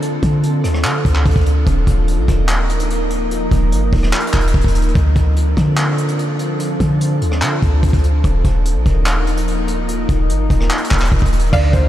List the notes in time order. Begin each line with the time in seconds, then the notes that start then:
Already playing: D3 F3 C4 D4 A4
0.02 closed hi-hat
0.23 D3, kick, closed hi-hat
0.43 closed hi-hat
0.64 D#2, cross-stick, closed hi-hat
0.74 cross-stick
0.84 D3, clap, closed hi-hat
1.05 D2, kick, closed hi-hat
1.15 clap
1.26 D2, kick, closed hi-hat
1.31 closed hi-hat
1.36 D2, kick, closed hi-hat
1.41 closed hi-hat
1.46 closed hi-hat
1.67 D#1 A#3 D#4 A#4, kick, closed hi-hat
1.87 D#1, kick, closed hi-hat
2.08 closed hi-hat
2.18 A#1
2.28 D#1, kick, cross-stick, closed hi-hat
2.49 clap, closed hi-hat
2.69 closed hi-hat
2.80 closed hi-hat
2.90 closed hi-hat
3.10 closed hi-hat
3.31 closed hi-hat
3.51 D#1, kick, closed hi-hat
3.72 G1, closed hi-hat
3.93 D#1, kick, open hi-hat
4.03 cross-stick
4.13 clap, closed hi-hat
4.20 closed hi-hat
4.27 closed hi-hat
4.34 D#1, kick, clap
4.41 closed hi-hat
4.47 closed hi-hat
4.54 D#1, kick
4.61 D#1, kick, closed hi-hat
4.68 closed hi-hat
4.75 closed hi-hat
4.82 closed hi-hat
4.89 closed hi-hat
4.95 D2 F3 C4 D4 A4, kick, closed hi-hat
5.16 D2, kick, closed hi-hat
5.36 closed hi-hat
5.57 D3, kick, cross-stick, closed hi-hat
5.77 clap, closed hi-hat
5.98 closed hi-hat
6.08 closed hi-hat
6.19 closed hi-hat
6.39 closed hi-hat
6.60 closed hi-hat
6.80 D3, kick, closed hi-hat
7.01 closed hi-hat
7.21 D#2, closed hi-hat
7.32 cross-stick
7.42 D3, clap, closed hi-hat
7.62 D2, kick, closed hi-hat
7.83 D2, kick, closed hi-hat
7.88 closed hi-hat
7.93 D2, kick, closed hi-hat
7.99 closed hi-hat
8.04 closed hi-hat
8.24 D#1 F3 A#3 D#4 A#4, kick, closed hi-hat
8.44 D#1, kick, closed hi-hat
8.65 closed hi-hat
8.76 A#1
8.86 D#1, kick, closed hi-hat
9.06 clap, closed hi-hat
9.27 closed hi-hat
9.37 closed hi-hat
9.48 closed hi-hat
9.68 closed hi-hat
9.88 closed hi-hat
10.09 D#1, kick, closed hi-hat
10.30 G1, closed hi-hat
10.50 D#1, kick, closed hi-hat
10.60 cross-stick
10.71 clap, closed hi-hat
10.78 closed hi-hat
10.84 closed hi-hat
10.91 D#1, kick, clap
10.98 clap, closed hi-hat
11.05 closed hi-hat
11.12 D#1, kick
11.19 D#1, kick, closed hi-hat
11.26 closed hi-hat
11.32 closed hi-hat
11.39 closed hi-hat
11.46 closed hi-hat
11.53 D2 D3 F3 C4 D4 A4 D5 F5, kick, crash
11.73 D2 D3 C5, kick, closed hi-hat